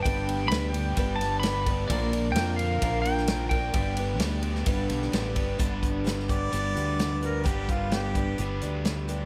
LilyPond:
<<
  \new Staff \with { instrumentName = "Pedal steel guitar" } { \time 4/4 \key g \major \tempo 4 = 130 g''4 b''8 g''4 a''8 b''4 | d''4 g''8 f''4 g''4 g''8~ | g''2. r4 | r1 |
r1 | }
  \new Staff \with { instrumentName = "Harmonica" } { \time 4/4 \key g \major r1 | r1 | r1 | r4. d''2 bes'8 |
g'8 f'8 g'4 r2 | }
  \new Staff \with { instrumentName = "Overdriven electric guitar" } { \time 4/4 \key g \major <g, d g b d' g'>8 <g b d' g'>8 <g b d' g'>8 <g, d g b d' g'>8 <g b d' g'>8 <g, d g b d' g'>8 <g b d' g'>8 <g b d' g'>8 | <bes, d f bes d' bes'>8 <f bes d' bes'>8 <f bes d' bes'>8 <bes, d f bes d' bes'>8 <f bes d' bes'>8 <bes, d f bes d' bes'>8 <f bes d' bes'>8 <f bes d' bes'>8 | <g, d g b d' g'>8 <g b d' g'>8 <g b d' g'>8 <g, d g b d' g'>8 <g b d' g'>8 <g, d g b d' g'>8 <g b d' g'>8 <g b d' g'>8 | <g b d' b'>2 <g b d' b'>2 |
<g b d' b'>2 <g b d' b'>2 | }
  \new Staff \with { instrumentName = "Twelve-string acoustic guitar" } { \time 4/4 \key g \major <g, d g b d' b'>4 <g b d' b'>4 <g, d g b d' b'>4 <g b d' b'>8 <g b d' b'>8 | <bes, d f bes d' bes'>4 <f bes d' bes'>4 <bes, d f bes d' bes'>4 <f bes d' bes'>8 <f bes d' bes'>8 | <g, d g b d' b'>8 <g b d' b'>8 <g b d' b'>4 <g, d g b d' b'>4 <g b d' b'>8 <g b d' b'>8 | <g, d g b d' g'>4 <g b d' g'>8 <g b d' g'>8 <g b d' g'>8 <g b d' g'>4 <g b d' g'>8 |
<g, d g b d' g'>4 <g b d' g'>8 <g b d' g'>8 <g b d' g'>8 <g b d' g'>4 <g b d' g'>8 | }
  \new Staff \with { instrumentName = "Fingered electric bass" } { \clef bass \time 4/4 \key g \major g,,4 d,4 g,,2 | bes,,4 f,4 bes,,2 | g,,4 d,4 g,,8 b,,8 a,,8 g,,8 | g,,2 g,,8 d,4. |
g,,2 g,,8 d,4. | }
  \new DrumStaff \with { instrumentName = "Drums" } \drummode { \time 4/4 <bd cymr>8 cymr8 <cymr sn>8 cymr8 <bd cymr>8 <cymr sn>8 <cymr sn>8 <bd cymr>8 | <bd cymr>8 cymr8 <cymr sn>8 cymr8 <bd cymr>8 cymr16 sn16 <cymr sn>8 <bd cymr>8 | <bd cymr>8 cymr8 <cymr sn>8 cymr16 sn16 <bd cymr>8 <cymr sn>16 sn16 <cymr sn>8 <bd cymr>8 | <hh bd>8 <hh bd>8 <hh sn>16 sn16 <hh bd>8 hh8 hh8 <hh sn>8 hh8 |
<hh bd>8 <hh bd>8 <hh sn>8 <hh bd>8 hh8 hh8 <hh sn>8 hh8 | }
>>